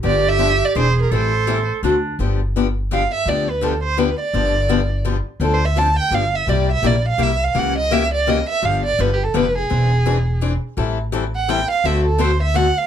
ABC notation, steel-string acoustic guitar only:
X:1
M:3/4
L:1/16
Q:"Swing" 1/4=168
K:Gmix
V:1 name="Steel-string acoustic guitar"
[D,F,B,DG]2 z2 [D,F,B,DG] z3 [E,^B,D^G] z3 | [E,G,CEA]2 z2 [E,G,CEA] z3 [D,A,C^FA] z3 | [D,F,B,DG]2 z2 [D,F,B,DG] z3 [D,F,B,DG] z3 | [D,F,B,DG]2 z2 [D,F,B,DG] z3 [D,F,B,DG] z3 |
[D,F,B,DG]2 z2 [D,F,B,DG] z3 [D,F,B,DG] z3 | [D,F,CDA]2 z2 [D,F,CDA] z3 [D,F,B,DG] z3 | [C,G,_B,EG]2 z2 [C,G,B,EG] z3 [C,G,B,EG] z3 | [^C,E,^A,^CG]2 z2 [C,E,A,CG] z3 [C,E,A,CG] z3 |
[D,F,B,DG]2 z2 [D,F,B,DG] z3 [D,F,B,DG] z3 | [E,^B,D^G]2 z2 [E,B,DG] z3 [E,B,DG] z3 | [E,G,CEA]2 z2 [E,G,CEA] z3 [E,G,CEA] z3 | [D,A,C^FA]2 z2 [D,A,CFA] z3 [D,A,CFA] z3 |]